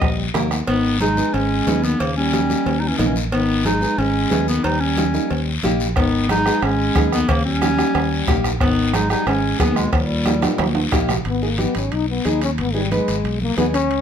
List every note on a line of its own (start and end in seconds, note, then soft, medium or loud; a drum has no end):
0.00 0.28 A#1 medium
0.00 0.31 G3 medium
0.00 0.31 D#5 loud
0.00 bombo low medium
0.00 bombo rim medium
0.00 cowbell medium
0.00 long guiro medium
0.34 0.61 D#2 medium
0.34 0.58 A#3 medium
0.34 0.58 D#4 medium
0.34 0.58 A#4 loud
0.34 bombo rim medium
0.34 high conga medium
0.34 low conga medium
0.34 low timbale medium
0.34 short guiro medium
0.51 bombo rim medium
0.51 low timbale medium
0.51 short guiro medium
0.67 1.21 G#1 medium
0.67 0.99 D#3 medium
0.67 0.98 B3 loud
0.67 cowbell loud
0.67 high conga soft
0.67 long guiro medium
1.00 1.34 G#3 medium
1.00 1.07 B3 medium
1.00 1.35 D#4 loud
1.00 1.07 D#4 medium
1.00 1.07 G#4 medium
1.00 cowbell medium
1.00 high conga medium
1.00 short guiro medium
1.17 1.35 B3 medium
1.17 1.35 D#4 medium
1.17 1.35 G#4 medium
1.17 short guiro medium
1.34 1.60 G#1 loud
1.34 1.85 G#3 medium
1.34 1.85 C#4 loud
1.34 cowbell medium
1.34 high conga soft
1.34 long guiro medium
1.67 1.93 D#2 loud
1.67 1.90 B3 medium
1.67 1.90 D#4 medium
1.67 1.90 G#4 medium
1.67 cowbell medium
1.67 high conga medium
1.67 low timbale medium
1.67 short guiro medium
1.84 2.02 D#3 medium
1.84 2.02 B3 loud
1.84 short guiro medium
2.00 2.53 D#2 medium
2.00 2.16 C#3 medium
2.00 2.16 A#3 medium
2.00 cowbell loud
2.00 high conga soft
2.00 long guiro medium
2.16 2.80 G3 medium
2.16 2.82 C#4 loud
2.33 2.39 A#3 medium
2.33 2.39 D#4 medium
2.33 2.39 G4 medium
2.33 cowbell medium
2.33 high conga medium
2.33 short guiro medium
2.50 2.67 A#3 medium
2.50 2.67 D#4 medium
2.50 2.67 G4 medium
2.50 short guiro medium
2.66 2.93 D#2 loud
2.66 cowbell medium
2.66 high conga soft
2.66 long guiro medium
2.80 2.90 G3 medium
2.80 2.90 D#4 medium
2.88 2.99 E3 medium
2.88 2.99 C#4 medium
2.97 3.32 A#1 medium
2.97 3.09 D#3 medium
2.97 3.22 A#3 medium
2.97 3.08 B3 medium
2.97 3.22 D#4 medium
2.97 3.22 A#4 medium
2.97 cowbell medium
2.97 high conga medium
2.97 low conga medium
2.97 short guiro medium
3.06 3.16 E3 medium
3.06 3.16 C#4 medium
3.16 short guiro medium
3.32 3.85 G#1 medium
3.32 3.67 D#3 medium
3.32 3.67 B3 loud
3.32 cowbell loud
3.32 high conga soft
3.32 long guiro medium
3.65 3.98 G#3 medium
3.65 3.71 B3 medium
3.65 4.00 D#4 loud
3.65 3.71 D#4 medium
3.65 3.71 G#4 medium
3.65 cowbell medium
3.65 high conga medium
3.65 short guiro medium
3.81 3.99 B3 medium
3.81 3.99 D#4 medium
3.81 3.99 G#4 medium
3.81 short guiro medium
3.98 4.25 G#1 loud
3.98 4.48 G#3 medium
3.98 4.48 C#4 loud
3.98 cowbell medium
3.98 high conga soft
3.98 long guiro medium
4.30 4.58 D#2 medium
4.30 4.54 B3 medium
4.30 4.54 D#4 medium
4.30 4.54 G#4 medium
4.30 cowbell medium
4.30 high conga medium
4.30 low timbale medium
4.30 short guiro medium
4.48 4.66 D#3 medium
4.48 4.65 B3 medium
4.48 short guiro medium
4.64 5.17 D#2 medium
4.64 4.81 G3 medium
4.64 4.82 D#4 medium
4.64 cowbell loud
4.64 long guiro medium
4.81 5.53 G3 medium
4.81 5.53 C#4 loud
4.97 5.03 A#3 medium
4.97 5.03 D#4 medium
4.97 5.03 G4 medium
4.97 cowbell medium
4.97 high conga medium
4.97 short guiro medium
5.14 5.31 A#3 medium
5.14 5.31 D#4 medium
5.14 5.32 A#4 medium
5.14 short guiro medium
5.30 5.57 D#2 loud
5.30 cowbell medium
5.30 high conga soft
5.30 long guiro medium
5.63 5.96 A#1 medium
5.63 5.87 A#3 medium
5.63 5.87 D#4 medium
5.63 5.87 G4 loud
5.63 cowbell medium
5.63 high conga medium
5.63 low conga medium
5.63 short guiro medium
5.80 short guiro medium
5.96 6.49 G#1 medium
5.96 6.28 D#3 medium
5.96 6.27 B3 loud
5.96 bombo low medium
5.96 bombo rim medium
5.96 cowbell loud
5.96 high conga soft
5.96 long guiro medium
6.29 6.64 G#3 medium
6.29 6.35 B3 medium
6.29 6.36 D#4 medium
6.29 6.65 D#4 loud
6.29 6.36 G#4 medium
6.29 bombo rim medium
6.29 cowbell medium
6.29 high conga medium
6.29 short guiro medium
6.46 6.63 B3 medium
6.46 6.64 D#4 medium
6.46 6.64 G#4 medium
6.46 bombo rim medium
6.46 short guiro medium
6.62 6.89 G#1 loud
6.62 7.12 G#3 medium
6.62 7.13 C#4 loud
6.62 bombo rim medium
6.62 cowbell medium
6.62 high conga soft
6.62 long guiro medium
6.95 7.22 D#2 medium
6.95 7.19 B3 medium
6.95 7.19 D#4 medium
6.95 7.19 G#4 medium
6.95 bombo low medium
6.95 bombo rim medium
6.95 cowbell medium
6.95 high conga medium
6.95 short guiro medium
7.12 7.31 D#3 medium
7.12 7.30 B3 loud
7.12 bombo rim medium
7.12 short guiro medium
7.29 7.82 D#2 medium
7.29 7.45 C#3 medium
7.29 7.44 A#3 loud
7.29 bombo low medium
7.29 bombo rim medium
7.29 cowbell loud
7.29 high conga soft
7.29 long guiro medium
7.45 8.41 G3 medium
7.45 8.40 C#4 loud
7.61 7.68 A#3 medium
7.61 7.68 D#4 medium
7.61 7.68 G4 medium
7.61 bombo rim medium
7.61 cowbell medium
7.61 high conga medium
7.61 short guiro medium
7.78 7.96 A#3 medium
7.78 7.96 D#4 medium
7.78 7.96 G4 medium
7.78 bombo rim medium
7.78 short guiro medium
7.95 8.21 D#2 loud
7.95 bombo rim medium
7.95 cowbell medium
7.95 high conga soft
7.95 long guiro medium
8.28 8.61 A#1 loud
8.28 8.51 A#3 loud
8.28 8.51 D#4 medium
8.28 8.51 G4 loud
8.28 bombo low medium
8.28 bombo rim medium
8.28 cowbell medium
8.28 high conga medium
8.28 low conga medium
8.28 short guiro medium
8.44 bombo rim medium
8.44 short guiro medium
8.61 9.14 G#1 medium
8.61 8.96 D#3 medium
8.61 8.95 B3 loud
8.61 bombo low medium
8.61 bombo rim medium
8.61 cowbell loud
8.61 high conga soft
8.61 long guiro medium
8.93 9.10 G#3 medium
8.93 9.00 B3 medium
8.93 9.11 D#4 loud
8.93 9.00 D#4 medium
8.93 9.00 G#4 medium
8.93 bombo rim medium
8.93 cowbell medium
8.93 high conga medium
8.93 short guiro medium
9.09 9.26 G3 medium
9.09 9.27 B3 medium
9.09 9.27 D#4 medium
9.09 9.26 D#4 loud
9.09 9.28 G#4 medium
9.09 bombo rim medium
9.09 short guiro medium
9.27 9.53 G#1 loud
9.27 9.58 G#3 medium
9.27 9.58 C#4 loud
9.27 bombo rim medium
9.27 cowbell medium
9.27 long guiro medium
9.59 9.86 D#2 medium
9.59 9.78 D#3 medium
9.59 9.83 B3 medium
9.59 9.78 B3 medium
9.59 9.83 D#4 medium
9.59 9.83 G#4 medium
9.59 bombo low medium
9.59 bombo rim medium
9.59 cowbell medium
9.59 high conga medium
9.59 short guiro medium
9.76 9.93 B2 medium
9.76 9.92 G#3 medium
9.76 bombo rim medium
9.76 short guiro medium
9.93 10.46 D#2 medium
9.93 10.89 A#2 medium
9.93 10.88 G3 medium
9.93 bombo low medium
9.93 bombo rim medium
9.93 cowbell loud
9.93 high conga soft
9.93 long guiro medium
10.25 10.32 A#3 medium
10.25 10.32 D#4 medium
10.25 10.32 G4 medium
10.25 bombo rim medium
10.25 cowbell medium
10.25 high conga medium
10.25 short guiro medium
10.42 10.60 A#3 medium
10.42 10.60 D#4 medium
10.42 10.60 G4 medium
10.42 bombo rim medium
10.42 high conga medium
10.42 high timbale loud
10.42 short guiro medium
10.58 10.86 D#2 loud
10.58 bombo rim medium
10.58 cowbell medium
10.58 high conga medium
10.58 low timbale loud
10.58 long guiro medium
10.75 high timbale loud
10.92 11.19 A#1 medium
10.92 11.15 A#3 medium
10.92 11.16 D#4 medium
10.92 11.16 G4 loud
10.92 bombo low medium
10.92 bombo rim medium
10.92 cowbell medium
10.92 low timbale medium
10.92 short guiro medium
11.09 bombo rim medium
11.09 low conga medium
11.09 low timbale medium
11.09 short guiro medium
11.25 11.65 G#1 medium
11.25 11.45 B3 medium
11.25 high timbale medium
11.25 long guiro medium
11.42 11.59 A#3 medium
11.42 11.48 B3 medium
11.42 11.48 D#4 medium
11.42 11.48 G#4 medium
11.58 11.82 B3 medium
11.58 11.75 B3 medium
11.58 11.82 D#4 medium
11.58 11.82 G4 medium
11.58 high conga medium
11.58 high timbale medium
11.58 short guiro medium
11.75 11.89 G#1 medium
11.75 11.95 C#4 medium
11.75 high timbale medium
11.75 short guiro medium
11.92 12.19 B1 medium
11.92 12.09 D#4 medium
11.92 high timbale medium
11.92 long guiro medium
12.10 12.28 B3 medium
12.25 12.60 D#2 loud
12.25 12.42 B3 medium
12.25 12.42 D#4 medium
12.25 12.43 G#4 medium
12.25 high conga medium
12.25 high timbale medium
12.25 short guiro medium
12.41 12.50 C#4 medium
12.41 high timbale medium
12.41 short guiro medium
12.58 12.98 G#1 medium
12.58 12.77 B3 medium
12.58 high timbale medium
12.58 long guiro medium
12.74 12.92 G3 medium
12.74 12.80 B3 medium
12.74 12.80 D#4 medium
12.74 12.80 G#4 medium
12.91 13.38 G#3 medium
12.91 13.15 B3 medium
12.91 13.15 D#4 medium
12.91 13.15 B4 medium
12.91 high conga medium
12.91 high timbale medium
12.91 short guiro medium
13.08 13.21 G#1 medium
13.08 high timbale medium
13.08 short guiro medium
13.24 13.51 B1 medium
13.24 high timbale medium
13.24 long guiro medium
13.41 13.57 A#3 medium
13.41 high conga medium
13.57 13.90 D#2 medium
13.57 13.75 B3 medium
13.57 13.65 B3 medium
13.57 13.75 D#4 medium
13.57 13.75 G#4 medium
13.57 high conga medium
13.57 high timbale medium
13.57 low timbale medium
13.57 short guiro medium
13.74 14.01 C#4 loud
13.74 high timbale medium
13.74 short guiro medium
13.90 14.01 C#2 medium
13.90 high timbale medium
13.90 long guiro medium